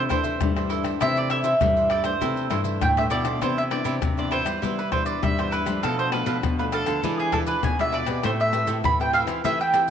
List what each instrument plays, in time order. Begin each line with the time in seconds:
Already playing: nylon-string guitar C3
0.09 nylon-string guitar E3 A3 D4, cavaquinho E4 A4 C5 E5, mandolin C5, pandeiro, tamborim, maracas, surdo
0.23 cavaquinho A4 C5 E5, pandeiro, maracas
0.41 nylon-string guitar G2 E3 G3 A3 D4, pandeiro, tamborim, maracas, surdo
0.56 nylon-string guitar E3 A3 D4, cavaquinho A4 C5 E5, pandeiro, tamborim, maracas
0.69 cavaquinho E4 A4 C5 E5, pandeiro
0.84 cavaquinho A4 C5 E5, pandeiro, tamborim, maracas
1.00 nylon-string guitar C3 E3 A3 D4, cavaquinho E4 A4 C5 E5, mandolin E5, pandeiro, tamborim, maracas, surdo
1.17 mandolin D5, pandeiro, maracas
1.30 cavaquinho E4 A4 C5 E5, mandolin E5, pandeiro, tamborim, maracas
1.44 cavaquinho E4 A4 C5 E5, pandeiro, maracas
1.61 nylon-string guitar G2 E3 G3 A3 D4, pandeiro, tamborim, maracas, surdo
1.77 cavaquinho A4 C5 E5, pandeiro, maracas
1.89 cavaquinho E4 A4 C5 E5, mandolin D5, pandeiro, tamborim
2.03 nylon-string guitar E3 A3 D4, cavaquinho A4 C5 E5, mandolin C5, pandeiro, tamborim, maracas
2.21 nylon-string guitar C3, cavaquinho E4 A4 C5 E5, pandeiro, maracas, surdo
2.37 pandeiro, maracas
2.50 nylon-string guitar G2 E3 A3 D4, cavaquinho E4 A4 C5 E5, pandeiro, tamborim
2.64 cavaquinho A4 C5 E5, pandeiro, maracas
2.81 nylon-string guitar G2 A2, mandolin G5, pandeiro, tamborim, maracas, surdo
2.97 nylon-string guitar E3 A3 D4, cavaquinho A4 C5 E5, mandolin E5, pandeiro, tamborim, maracas
3.10 nylon-string guitar B2, cavaquinho E4 A4 C5 E5, mandolin D5, pandeiro, maracas
3.24 cavaquinho A4 C5 E5, pandeiro, tamborim, maracas
3.41 nylon-string guitar C3 E3 B3 D4, cavaquinho E4 B4 C5 E5, mandolin C5, pandeiro, tamborim, maracas, surdo
3.58 mandolin E5, pandeiro, maracas
3.70 nylon-string guitar E3 B3 D4, cavaquinho E4 B4 C5 E5, mandolin D5, pandeiro, tamborim
3.84 nylon-string guitar C3, cavaquinho E4 B4 C5 E5, pandeiro, maracas
4.02 nylon-string guitar G2 C3, pandeiro, tamborim, maracas, surdo
4.17 nylon-string guitar E3 B3 D4, cavaquinho B4 C5 E5, mandolin D5, pandeiro, maracas
4.31 cavaquinho E4 B4 C5 E5, mandolin C5, pandeiro, tamborim
4.45 nylon-string guitar G3, cavaquinho B4 C5 E5, pandeiro, tamborim, maracas
4.62 nylon-string guitar C3 E3 G3 B3 D4, cavaquinho E4 B4 C5 E5, pandeiro, maracas, surdo
4.79 mandolin B4, pandeiro, maracas
4.91 nylon-string guitar E3 B3 D4, cavaquinho E4 B4 C5 E5, mandolin C5, pandeiro, tamborim, surdo
5.05 cavaquinho B4 C5 E5, mandolin D5, pandeiro, maracas
5.23 nylon-string guitar G2 G3, mandolin E5, pandeiro, tamborim, maracas, surdo
5.38 nylon-string guitar E3 B3 D4, cavaquinho B4 C5 E5, mandolin C5, pandeiro, tamborim, maracas
5.51 cavaquinho E4 B4 C5 E5, mandolin B4, pandeiro, maracas
5.66 nylon-string guitar F3 G3 A3 D4, cavaquinho B4 C5 E5, pandeiro, tamborim, maracas
5.83 nylon-string guitar B2, cavaquinho D4 A4 B4 F5, mandolin A4, pandeiro, tamborim, maracas, surdo
5.99 mandolin C5, pandeiro, maracas
6.12 nylon-string guitar F3 A3 D4, cavaquinho D4 A4 B4 F5, mandolin B4, pandeiro, tamborim
6.26 nylon-string guitar B2, cavaquinho D4 A4 B4 F5, pandeiro, maracas
6.43 nylon-string guitar B2, pandeiro, tamborim, maracas, surdo
6.59 nylon-string guitar F3 A3 D4, cavaquinho A4 B4 F5, mandolin B4, pandeiro, maracas
6.72 cavaquinho D4 A4 B4 F5, mandolin A4, pandeiro, tamborim, maracas
6.86 nylon-string guitar D3, cavaquinho A4 B4 F5, pandeiro, tamborim, maracas
7.03 nylon-string guitar E3 G#3 D4 F4, cavaquinho E4 G#4 B4 D5, pandeiro, maracas, surdo
7.19 mandolin G#4, pandeiro, maracas
7.32 nylon-string guitar G#3 D4 F4, cavaquinho E4 G#4 B4 D5, mandolin A4, pandeiro, tamborim, surdo
7.46 cavaquinho G#4 B4 D5, mandolin B4, pandeiro, maracas
7.63 nylon-string guitar B2, mandolin G#5, pandeiro, tamborim, maracas, surdo
7.79 nylon-string guitar G#3 D4 F4, cavaquinho G#4 B4 D5, mandolin E5, pandeiro, tamborim, maracas
7.92 cavaquinho E4 G#4 B4 D5, mandolin D5, pandeiro
8.06 nylon-string guitar B2 C4 G4 B4, cavaquinho G#4 B4 D5, pandeiro, tamborim, maracas
8.23 nylon-string guitar A2 A3, cavaquinho A4 C5 E5 G5, mandolin C5, pandeiro, tamborim, maracas, surdo
8.40 mandolin E5, pandeiro, maracas
8.52 nylon-string guitar C4 G4 B4, cavaquinho A4 C5 E5 G5, pandeiro, tamborim, maracas
8.67 nylon-string guitar A2, cavaquinho A4 C5 E5 G5, pandeiro, maracas
8.84 nylon-string guitar A2 E3, mandolin B5, pandeiro, tamborim, maracas, surdo
9.00 nylon-string guitar C4 G4 B4, cavaquinho C5 E5 G5, mandolin G5, pandeiro, maracas
9.13 cavaquinho A4 C5 E5 G5, mandolin F5, pandeiro, tamborim
9.27 nylon-string guitar E3, cavaquinho C5 E5 G5, pandeiro, tamborim, maracas
9.44 nylon-string guitar E3 A3 C4 G4 B4, cavaquinho A4 C5 E5 G5, mandolin E5, pandeiro, maracas, surdo
9.60 mandolin G5, pandeiro, maracas
9.73 nylon-string guitar C4 G4 B4, cavaquinho A4 C5 E5 G5, pandeiro, tamborim, maracas